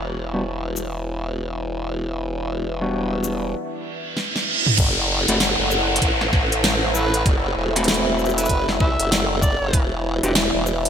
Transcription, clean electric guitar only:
0.33 0.42 G3 medium
0.33 0.42 B3 medium
0.33 0.42 D4 medium
0.33 0.42 F#4 medium
2.81 3.55 G3 medium
2.81 3.55 B3 medium
2.81 3.55 D4 medium
2.81 3.55 F#4 medium
5.28 5.37 A3 medium
5.28 5.37 C4 medium
5.28 5.37 E4 medium
5.28 5.37 F#4 loud
7.76 9.72 A3 medium
7.76 9.72 C4 medium
7.76 9.72 E4 medium
7.76 9.72 F#4 medium
10.23 10.31 B3 medium
10.23 10.32 D4 medium
10.23 10.31 F#4 medium
10.23 10.32 G4 loud

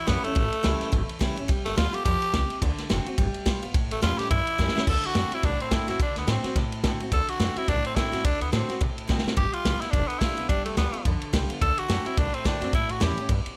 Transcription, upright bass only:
0.08 0.18 F#2 medium
0.25 muted upright bass stroke medium
0.36 0.46 A1 medium
0.54 muted upright bass stroke medium
0.65 0.75 C#2 loud
0.93 1.03 G1 medium
1.21 1.31 C#2 medium
1.38 1.45 A1 medium
1.49 1.59 G1 loud
1.66 1.73 G1 loud
1.77 1.88 D2 loud
1.94 muted upright bass stroke medium
2.06 2.16 F2 loud
2.22 muted upright bass stroke medium
2.34 2.44 C#2 medium
2.62 2.72 D2 loud
2.78 muted upright bass stroke medium
2.90 3.00 F#1 loud
3.07 muted upright bass stroke medium
3.18 3.28 G1 medium
3.35 muted upright bass stroke medium
3.46 3.57 B1 medium
3.63 3.70 G#1 medium
3.74 3.85 A1 loud
3.91 3.98 A1 loud
4.03 4.13 E2 medium
4.19 muted upright bass stroke medium
4.31 4.41 G2 loud
4.48 muted upright bass stroke medium
4.59 4.69 F#2 loud
4.76 muted upright bass stroke medium
4.87 4.98 D2 medium
5.04 muted upright bass stroke medium
5.15 5.25 F#2 loud
5.31 muted upright bass stroke medium
5.44 5.54 C2 medium
5.72 5.82 F#2 medium
5.88 5.95 F#2 medium
6.00 6.10 D2 medium
6.16 6.23 D2 medium
6.27 6.38 A2 loud
6.44 muted upright bass stroke medium
6.56 6.66 C3 medium
6.72 muted upright bass stroke medium
6.84 6.94 B2 medium
7.00 muted upright bass stroke medium
7.12 7.22 D2 loud
7.28 muted upright bass stroke medium
7.40 7.50 F#2 loud
7.56 muted upright bass stroke medium
7.68 7.78 C2 medium
7.84 muted upright bass stroke medium
8.13 8.20 F#2 medium
8.25 8.35 D2 medium
8.41 8.48 D2 loud
8.53 8.63 A2 medium
8.69 muted upright bass stroke medium
8.81 8.91 C3 medium
8.97 muted upright bass stroke medium
9.09 9.19 B2 loud
9.25 muted upright bass stroke medium
9.37 9.47 G1 loud
9.53 muted upright bass stroke medium
9.65 9.75 B1 loud
9.81 muted upright bass stroke medium
9.93 10.03 F1 medium
10.10 muted upright bass stroke medium
10.21 10.31 B1 medium
10.38 10.45 B1 medium
10.49 10.59 G1 medium
10.66 10.73 G1 medium
10.77 10.88 D2 loud
10.94 muted upright bass stroke medium
11.05 11.15 F2 medium
11.22 muted upright bass stroke medium
11.34 11.44 C2 medium
11.51 muted upright bass stroke medium
11.62 11.72 D2 loud
11.78 muted upright bass stroke medium
11.89 12.00 F#2 medium
12.05 muted upright bass stroke medium
12.18 12.28 C2 medium
12.34 muted upright bass stroke medium
12.45 12.56 F#2 loud
12.61 12.75 F#2 medium
12.73 12.84 A1 medium
12.89 12.97 A1 medium
13.02 13.12 E2 loud
13.18 muted upright bass stroke medium
13.29 13.40 G2 medium
13.46 muted upright bass stroke medium

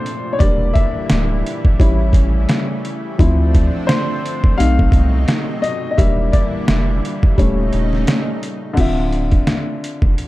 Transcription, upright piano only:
0.00 0.42 A3 soft
0.00 0.41 C4 soft
0.00 0.41 D4 medium
0.00 0.35 C5 medium
0.00 0.39 D5 medium
0.00 0.42 F5 medium
0.33 0.39 C#5 medium
0.39 1.76 G3 medium
0.39 1.76 A#3 medium
0.39 1.76 D4 medium
0.39 0.75 D5 medium
0.74 2.10 E5 medium
1.79 3.15 G3 medium
1.79 3.15 C#4 soft
1.79 3.16 E4 medium
3.18 4.54 F3 medium
3.18 4.54 C4 soft
3.18 4.55 E4 medium
3.87 4.60 C5 medium
4.58 5.07 A3 soft
4.58 5.07 C4 soft
4.58 5.07 D#4 medium
4.58 5.66 F5 medium
5.62 5.89 D#5 medium
5.91 5.97 D#5 medium
5.98 7.34 G3 medium
5.98 7.34 A#3 medium
5.98 7.34 D4 medium
5.98 6.34 E5 loud
6.32 7.33 D5 medium
7.38 7.86 G3 medium
7.38 7.86 A3 soft
7.38 7.86 C#4 medium
8.74 10.28 D3 medium
8.74 10.28 C4 medium
8.78 10.28 F4 medium
8.78 10.28 E5 medium

